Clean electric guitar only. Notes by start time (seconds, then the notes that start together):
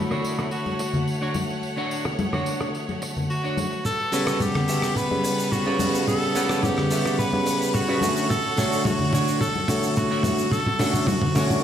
0.11 D4 F#4 C#5
0.79 muted clean electric guitar stroke
0.94 muted clean electric guitar stroke
1.22 D4 F#4 C#5
1.50 muted clean electric guitar stroke
1.77 D4 F#4 C#5
2.33 D4 F#4 C#5
3.02 muted clean electric guitar stroke
3.16 muted clean electric guitar stroke
3.44 D4 F#4 C#5
3.72 muted clean electric guitar stroke
4.13 F#4 G4 A4 B4 C#5
4.69 F#4 G4 A4 B4 E5
5.24 muted clean electric guitar stroke
5.38 muted clean electric guitar stroke
5.66 F#4 G4 A4 B4 C#5
6.36 F#4 G4 A4 B4 C#5
6.91 F#4 G4 A4 B4 E5
7.46 muted clean electric guitar stroke
7.61 muted clean electric guitar stroke
7.89 F#4 G4 A4 B4 C#5
8.57 D4 F#4 C#5
9.13 D4 F#4 C#5
9.69 muted clean electric guitar stroke
9.83 muted clean electric guitar stroke
10.11 D4 F#4 E5
10.80 D4 F#4 C#5
11.35 D4 F#4 C#5